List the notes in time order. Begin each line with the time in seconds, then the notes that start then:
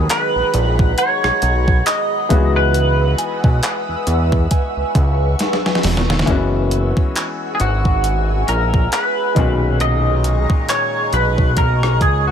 Already playing: D#3 F#3 G#3 B3 F#4 G#4 F#5 A#5 B5
0.10 B4, clap, closed hi-hat
0.36 A#1
0.54 A#1, closed hi-hat
0.79 kick
0.98 C#5 F#5, closed hi-hat
1.24 B1, cross-stick
1.42 B1, closed hi-hat
1.68 kick
1.86 D#5, clap, closed hi-hat
2.29 C#2 E3 G#3 B3 D#4 B4 D#6 E6, kick, closed hi-hat
2.33 F#4
2.56 B4
2.74 closed hi-hat
3.18 G#5, closed hi-hat
3.44 B1, kick
3.63 clap, closed hi-hat
3.89 E2
4.07 E2 C#6, closed hi-hat
4.32 kick
4.51 G#5, kick, closed hi-hat
4.77 C#2
4.95 C#2, kick, closed hi-hat
5.39 snare, closed hi-hat
5.53 snare
5.66 snare
5.75 snare
5.83 E1, snare, open hi-hat
5.97 snare
6.10 snare
6.19 snare
6.26 F#1 E3 G#3 A#3 C#4 G#4 F#5 G#5 E6, kick, closed hi-hat
6.30 F#4
6.35 B3
6.71 closed hi-hat
6.97 kick
7.16 clap, closed hi-hat
7.55 G#4
7.60 G#1 F#4, closed hi-hat
7.85 kick
8.04 closed hi-hat
8.48 A#1 A#4, closed hi-hat
8.74 kick
8.92 B4, clap, closed hi-hat
9.35 B1 A#2 D#3 G#3 C#4 D#5 A#5 C#6, kick, closed hi-hat
9.39 F#4
9.80 D#5, closed hi-hat
10.24 closed hi-hat
10.50 kick
10.69 C#5, clap, closed hi-hat
11.13 B1 B4 G#5, closed hi-hat
11.38 kick
11.57 A#4, kick, closed hi-hat
11.83 cross-stick
12.01 C#2 G#4, kick, closed hi-hat
12.27 F#4